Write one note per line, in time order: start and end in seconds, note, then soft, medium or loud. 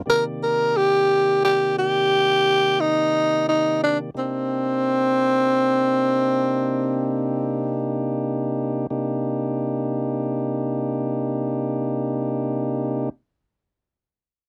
0.06 4.10 C3 medium
0.06 4.10 D#3 medium
0.06 4.10 A#3 medium
0.06 4.10 G4 medium
0.06 0.24 A#4 medium
0.06 4.11 D5 medium
0.43 0.78 A#4 medium
0.77 1.43 G4 loud
1.45 1.74 G4 medium
1.78 2.82 G4 medium
2.80 3.46 D#4 medium
3.49 3.79 D#4 medium
3.84 3.98 D4 medium
4.14 8.87 C3 medium
4.14 8.87 A#3 medium
4.14 8.87 D4 medium
4.14 8.87 D#4 medium
4.14 8.87 G4 soft
4.19 7.98 C4 medium
8.90 13.09 C3 medium
8.90 13.09 A#3 medium
8.90 13.10 D4 medium
8.90 13.09 D#4 medium
8.90 13.09 G4 medium